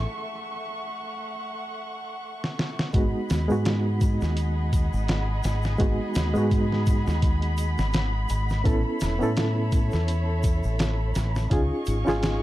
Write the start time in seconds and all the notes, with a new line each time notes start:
Already playing: A3 E5 C#6
0.09 F#5
2.44 snare
2.59 snare
2.79 snare
2.93 G#1 G#3 B3 D#4 F#4 G#4 D#5 F#5 B5, kick, closed hi-hat, shaker
3.29 D#2, snare, closed hi-hat, shaker
3.48 G#2 G#3 B3 D#4 F#4, shaker
3.65 snare, closed hi-hat, shaker
4.01 kick, closed hi-hat, shaker
4.21 D#2, snare, shaker
4.37 closed hi-hat, shaker
4.73 kick, closed hi-hat, shaker
4.93 G#1, shaker
5.08 snare, closed hi-hat, shaker
5.43 G#1, snare, closed hi-hat, shaker
5.62 snare, shaker
5.78 G#3 B3 D#4 F#4, kick, closed hi-hat, shaker
6.14 D#2, snare, closed hi-hat, shaker
6.34 G#2 G#3 B3 D#4 F#4, shaker
6.51 kick, closed hi-hat, shaker
6.72 snare
6.86 kick, closed hi-hat, shaker
7.07 D#2, snare, shaker
7.22 kick, closed hi-hat, shaker
7.42 closed hi-hat
7.58 closed hi-hat, shaker
7.78 G#1, snare, shaker
7.93 snare, closed hi-hat, shaker
8.29 G#1, closed hi-hat, shaker
8.49 snare, shaker
8.64 A1 B3 C#4 E4 A4 C#5 E5, kick, closed hi-hat, shaker
9.00 E1, snare, closed hi-hat, shaker
9.19 A2 B3 C#4 E4 A4, shaker
9.36 snare, closed hi-hat, shaker
9.72 kick, closed hi-hat, shaker
9.91 E2, snare, shaker
10.08 closed hi-hat, shaker
10.43 kick, closed hi-hat, shaker
10.63 A1, shaker
10.79 snare, closed hi-hat, shaker
11.15 A1, snare, closed hi-hat, shaker
11.35 snare, shaker
11.50 C#2 C#4 D#4 F4 G#4 D#5 F5 C#6, kick, closed hi-hat, shaker
11.86 G#1, closed hi-hat, shaker
12.05 G#1 C#4 D#4 F4 G#4, snare, shaker
12.23 snare, closed hi-hat, shaker